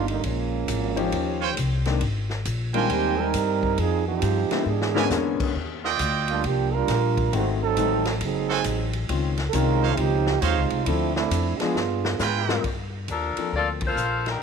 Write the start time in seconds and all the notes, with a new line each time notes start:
Already playing: G1
0.08 D3 G3 A#3 D#4, ride
0.24 A#1 F3 G#3 A#3 C#4, kick, ride
0.68 G#1, kick, hi-hat pedal, ride
0.96 F3 C#4 D#4 G4 C5, ride
1.12 D#2, kick, ride
1.40 F4 C5 C#5 G5
1.57 C2, kick, hi-hat pedal, ride
1.85 D#3 G#3 A#3 C4 D4, snare, ride
2.01 G#1, kick, ride
2.30 snare
2.45 A#1, kick, hi-hat pedal, ride
2.73 D#3 G3 G#3 A#3 C4 D4 F4 A#4 C5 G5 G#5, ride
2.89 D#2 D#3 A#3 C4 G4, kick, ride
3.19 G3 C4 D#4 A#4
3.34 G2, kick, hi-hat pedal, ride
3.63 kick
3.78 F2 F3 C4 D#4 G#4, kick, ride
4.07 F3 C4 D#4 G4
4.22 G2, kick, hi-hat pedal, ride
4.50 D3 G#3 A#3 B3 E4, muted upright bass stroke, snare, ride
4.66 G#2 E3 B3 D4 G#4
4.81 snare
4.94 D3 G#3 A#3 B3 C#4 E4 A#4 D5 G#5, snare
5.10 E2, snare, hi-hat pedal
5.40 kick, crash
5.55 D#2, kick
5.84 F4 D5 D#5 G5, snare
5.99 D2, kick, hi-hat pedal, ride
6.28 G3 A#3 D4 F4, ride
6.44 C2 F3 A#3 D4 G4, kick, ride
6.74 G3 D4 F4 A#4
6.88 A#1, kick, snare, hi-hat pedal, ride
7.17 kick, ride
7.32 G#1 D#3 G#3 A3 C4 F#4, kick, ride
7.63 F#3 C4 D#4 A4
7.76 A1 D#3 G#3 A3 C4 D#4, kick, hi-hat pedal, ride
8.05 snare, ride
8.21 F#1 F#3 C4 D#4 G#4, kick, ride
8.49 F#4 A4 C5 G#5, snare
8.64 A1, kick, hi-hat pedal, ride
8.93 ride
9.09 C#2 D#3 G#3 C4 C#4 F4, kick, ride
9.37 snare, ride
9.48 A4
9.53 C2 D#3 G#3 C4 C#4 D#4 F4 A#4, kick, hi-hat pedal, ride
9.82 D#4 C5 C#5 F5
9.96 C#2 F3 C4 D#4 G4, kick, ride
10.26 snare
10.41 D#2 G#3 C4 D#4 F4 C5 C#5 F5, kick, hi-hat pedal, ride
10.56 C#2
10.70 C2, ride
10.85 D2 F3 A3 C4 D4 E4 A4, kick, ride
11.14 A3 C4 D4 E4, snare
11.31 F2, kick, hi-hat pedal, ride
11.57 F3 G#3 B3 D4 F4 G#4, muted upright bass stroke, snare, ride
11.75 G2, snare
12.05 snare
12.19 G#2 F4 G#4 B4 G5, snare, hi-hat pedal
12.47 G3 A#3 C4 F4 A#4, snare
12.64 G2, kick, ride
13.08 D#2 F3 D4 A4 A#4, kick, hi-hat pedal, ride
13.37 F3 A#3 C4 A4, muted upright bass stroke, ride
13.52 D2, kick
13.56 A#3 F4 A4 D5
13.81 kick, ride
13.87 A#3 F4 A4 C5
13.96 A#1, hi-hat pedal
14.26 snare, ride
14.30 G3 D4 D#4 A#4